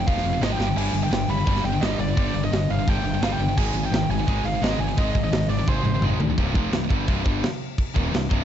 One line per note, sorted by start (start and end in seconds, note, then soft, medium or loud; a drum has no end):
0.07 0.20 F1 loud
0.07 0.23 F2 medium
0.07 0.24 C3 medium
0.07 0.24 F3 loud
0.07 0.43 F5 loud
0.07 kick loud
0.07 open hi-hat medium
0.17 snare soft
0.24 0.37 F1 loud
0.24 0.32 F2 medium
0.24 0.32 C3 medium
0.24 open hi-hat medium
0.33 0.40 F2 medium
0.33 0.41 C3 medium
0.41 0.54 G#1 medium
0.41 0.58 F2 medium
0.41 0.59 C3 loud
0.41 0.59 F3 loud
0.41 0.51 D#5 medium
0.41 snare loud
0.41 open hi-hat medium
0.52 0.77 G5 loud
0.58 0.71 G1 loud
0.58 0.67 G2 loud
0.58 0.67 D3 loud
0.58 0.67 G3 loud
0.58 snare medium
0.68 0.75 G2 medium
0.68 0.76 D3 medium
0.76 0.89 G1 loud
0.76 0.93 G2 medium
0.76 0.93 D3 loud
0.76 0.94 G3 medium
0.76 1.03 G#5 loud
0.76 crash loud
0.93 1.06 G1 medium
0.93 1.02 G2 medium
0.93 1.02 D3 medium
0.93 open hi-hat medium
1.03 1.10 G2 medium
1.03 1.11 D3 medium
1.03 1.31 G5 loud
1.11 1.24 G1 loud
1.11 1.28 G2 medium
1.11 1.28 D3 medium
1.11 snare loud
1.11 open hi-hat medium
1.28 1.41 G1 loud
1.28 1.36 G2 medium
1.28 1.36 D3 medium
1.28 1.66 B5 loud
1.28 open hi-hat medium
1.37 1.44 G2 medium
1.37 1.45 D3 medium
1.45 1.59 G1 loud
1.45 1.63 G2 loud
1.45 1.63 D3 loud
1.45 1.63 G3 loud
1.45 kick loud
1.45 open hi-hat loud
1.56 snare soft
1.63 1.76 G1 loud
1.63 1.72 G2 medium
1.63 1.72 D3 medium
1.63 1.83 G5 loud
1.63 open hi-hat medium
1.73 1.80 G2 medium
1.73 1.81 D3 medium
1.81 1.94 G1 loud
1.81 1.98 G2 loud
1.81 1.98 D3 loud
1.81 1.99 G3 loud
1.81 2.00 D#5 loud
1.81 snare loud
1.81 open hi-hat medium
1.99 2.12 G1 loud
1.99 2.07 G2 medium
1.99 2.06 D3 medium
1.99 2.16 D5 medium
1.99 open hi-hat medium
2.07 2.15 G2 medium
2.07 2.15 D3 medium
2.16 2.30 G1 loud
2.16 2.32 G2 loud
2.16 2.33 D3 medium
2.16 2.34 G3 loud
2.16 2.44 D5 loud
2.16 kick loud
2.16 open hi-hat medium
2.34 2.47 G1 medium
2.34 2.42 G2 medium
2.34 2.42 D3 medium
2.34 open hi-hat medium
2.43 2.50 G2 medium
2.43 2.51 D3 medium
2.43 2.71 D#5 loud
2.51 2.64 G1 loud
2.51 2.68 G2 medium
2.51 2.68 D3 medium
2.51 snare loud
2.51 open hi-hat loud
2.69 2.82 G1 medium
2.69 2.78 G2 medium
2.69 2.78 D3 medium
2.69 2.89 F5 medium
2.69 open hi-hat medium
2.79 2.86 G2 medium
2.79 2.86 D3 medium
2.87 3.00 G1 loud
2.87 3.04 G2 loud
2.87 3.03 D3 medium
2.87 3.04 G3 medium
2.87 3.24 G5 loud
2.87 kick loud
2.87 open hi-hat medium
3.04 3.17 G1 loud
3.04 3.13 G2 medium
3.04 3.12 D3 loud
3.04 open hi-hat medium
3.13 3.21 G2 medium
3.13 3.22 D3 medium
3.21 3.34 G1 loud
3.21 3.39 G2 medium
3.21 3.39 D3 medium
3.21 3.39 G3 loud
3.21 3.32 F5 loud
3.21 snare loud
3.33 3.56 G5 loud
3.39 3.51 G1 medium
3.39 3.48 G2 medium
3.39 3.48 D3 medium
3.39 open hi-hat medium
3.49 3.57 G2 medium
3.49 3.57 D3 medium
3.58 3.70 G#1 loud
3.58 3.74 G#2 loud
3.58 3.74 D#3 medium
3.58 3.75 G#3 loud
3.58 3.82 G#5 loud
3.58 kick loud
3.58 crash loud
3.74 3.87 G#1 loud
3.74 3.83 G#2 medium
3.74 3.83 D#3 medium
3.74 open hi-hat medium
3.84 3.91 G#2 medium
3.84 3.91 D#3 loud
3.84 4.11 G5 loud
3.91 4.04 G#1 loud
3.91 4.08 G#2 medium
3.91 4.08 D#3 medium
3.91 snare loud
3.91 open hi-hat medium
4.09 4.22 G#1 loud
4.09 4.18 G#2 medium
4.09 4.17 D#3 loud
4.09 4.46 G#5 loud
4.09 open hi-hat medium
4.19 4.26 G#2 medium
4.19 4.26 D#3 medium
4.27 4.40 G#1 loud
4.27 4.44 G#2 medium
4.27 4.43 D#3 medium
4.27 4.44 G#3 loud
4.27 kick loud
4.27 open hi-hat medium
4.44 4.57 G#1 loud
4.44 4.53 G#2 medium
4.44 4.52 D#3 loud
4.44 4.63 F5 medium
4.44 open hi-hat medium
4.53 4.61 G#2 medium
4.53 4.61 D#3 medium
4.62 4.74 G#1 loud
4.62 4.78 G#2 medium
4.62 4.78 D#3 loud
4.62 4.79 G#3 loud
4.62 4.81 D#5 medium
4.62 snare loud
4.79 4.92 G#1 medium
4.79 4.87 G#2 medium
4.79 4.87 D#3 medium
4.79 4.98 G#5 medium
4.79 open hi-hat medium
4.88 4.96 G#2 medium
4.88 4.96 D#3 medium
4.97 5.10 G#1 loud
4.97 5.13 G#2 loud
4.97 5.13 D#3 loud
4.97 5.14 G#3 loud
4.97 5.23 D#5 medium
4.97 kick loud
4.97 open hi-hat medium
5.15 5.27 G#1 medium
5.15 5.22 G#2 medium
5.15 5.22 D#3 medium
5.15 kick medium
5.15 open hi-hat medium
5.23 5.31 G#2 medium
5.23 5.31 D#3 medium
5.23 5.49 D#5 loud
5.31 5.44 G#1 loud
5.31 5.48 G#2 medium
5.31 5.48 D#3 medium
5.31 snare loud
5.31 open hi-hat medium
5.48 5.61 G#1 loud
5.48 5.58 G#2 medium
5.48 5.58 D#3 medium
5.48 5.68 D5 medium
5.48 open hi-hat medium
5.59 5.66 G#2 medium
5.59 5.67 D#3 medium
5.67 5.80 G#1 medium
5.67 5.84 G#2 medium
5.67 5.83 D#3 medium
5.67 5.85 G#3 loud
5.67 6.03 C5 medium
5.67 kick loud
5.67 high tom medium
5.83 5.96 G#1 loud
5.83 5.93 G#2 medium
5.83 5.92 D#3 medium
5.83 mid tom medium
5.94 6.01 G#2 medium
5.94 6.02 D#3 medium
6.01 6.14 G#1 medium
6.01 6.19 G#2 medium
6.01 6.19 D#3 loud
6.01 6.19 G#3 loud
6.01 mid tom loud
6.19 6.32 D2 medium
6.19 6.28 G#2 medium
6.19 6.27 D#3 medium
6.19 floor tom loud
6.29 6.37 G#2 medium
6.29 6.37 D#3 medium
6.38 6.54 C1 loud
6.38 6.54 C2 loud
6.38 6.55 G2 loud
6.38 6.54 C3 loud
6.38 kick loud
6.38 crash medium
6.55 6.71 F1 loud
6.55 6.72 F2 medium
6.55 6.72 C3 loud
6.55 6.72 F3 loud
6.55 kick loud
6.72 6.89 C1 medium
6.72 6.87 C2 medium
6.72 6.87 G2 medium
6.72 snare loud
6.72 crash medium
6.90 7.06 G1 loud
6.90 7.06 G2 medium
6.90 7.07 D3 medium
6.90 7.07 G3 loud
6.90 kick loud
7.07 7.24 C1 loud
7.07 7.24 C2 medium
7.07 7.23 G2 loud
7.07 7.25 C3 loud
7.07 kick loud
7.07 crash medium
7.24 7.42 G1 loud
7.24 7.42 G2 loud
7.24 7.42 D3 loud
7.24 7.42 G3 loud
7.24 kick loud
7.43 snare loud
7.43 crash medium
7.78 kick loud
7.78 crash medium
7.94 8.12 D#1 loud
7.94 8.12 D#2 medium
7.94 8.12 A#2 loud
7.94 8.12 D#3 loud
7.94 kick loud
8.12 8.29 C1 medium
8.12 8.26 C2 medium
8.12 8.27 G2 medium
8.12 snare loud
8.12 crash medium
8.29 8.44 C1 loud
8.29 8.44 C2 medium
8.29 8.44 G2 loud
8.29 8.44 C3 loud
8.29 kick loud